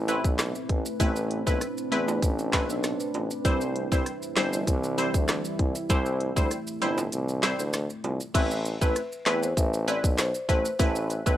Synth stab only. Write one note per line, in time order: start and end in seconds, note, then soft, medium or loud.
0.08 0.29 A3 medium
0.08 0.29 C4 medium
0.08 0.29 E4 medium
0.08 0.29 B4 medium
1.00 1.43 A3 loud
1.00 1.43 C4 medium
1.00 1.43 E4 medium
1.00 1.43 B4 loud
1.47 1.66 A3 medium
1.47 1.67 C4 medium
1.47 1.67 E4 medium
1.47 1.67 B4 medium
1.92 2.13 A3 medium
1.92 2.13 C4 medium
1.92 2.13 E4 medium
1.92 2.13 B4 medium
2.53 2.74 A3 medium
2.53 2.74 C4 medium
2.53 2.74 E4 medium
2.53 2.74 B4 medium
3.45 3.88 G3 loud
3.45 3.88 C4 medium
3.45 3.88 E4 medium
3.45 3.88 C5 loud
3.92 4.11 G3 medium
3.92 4.12 C4 medium
3.92 4.12 E4 medium
3.92 4.12 C5 medium
4.37 4.58 G3 medium
4.37 4.58 C4 medium
4.37 4.58 E4 medium
4.37 4.58 C5 medium
4.98 5.19 G3 medium
4.98 5.19 C4 medium
4.98 5.19 E4 medium
4.98 5.19 C5 medium
5.90 6.33 G3 loud
5.90 6.33 C4 medium
5.90 6.33 E4 medium
5.90 6.33 C5 loud
6.36 6.56 G3 medium
6.36 6.56 C4 medium
6.36 6.56 E4 medium
6.36 6.57 C5 medium
6.82 7.03 G3 medium
6.82 7.03 C4 medium
6.82 7.03 E4 medium
6.82 7.03 C5 medium
7.43 7.64 G3 medium
7.43 7.64 C4 medium
7.43 7.64 E4 medium
7.43 7.64 C5 medium
8.34 8.77 A3 loud
8.34 8.78 C4 medium
8.34 8.78 E4 medium
8.34 8.78 B4 loud
8.81 9.01 A3 medium
8.81 9.01 C4 medium
8.81 9.01 E4 medium
8.81 9.02 B4 medium
9.26 9.47 A3 medium
9.26 9.48 C4 medium
9.26 9.48 E4 medium
9.26 9.48 B4 medium
9.88 10.09 A3 medium
9.88 10.09 C4 medium
9.88 10.09 E4 medium
9.88 10.09 B4 medium
10.49 10.70 A3 medium
10.49 10.70 C4 medium
10.49 10.70 E4 medium
10.49 10.70 B4 medium
10.79 11.22 A3 loud
10.79 11.22 C4 medium
10.79 11.23 E4 medium
10.79 11.23 B4 loud
11.26 11.37 A3 medium
11.26 11.37 C4 medium
11.26 11.37 E4 medium
11.26 11.37 B4 medium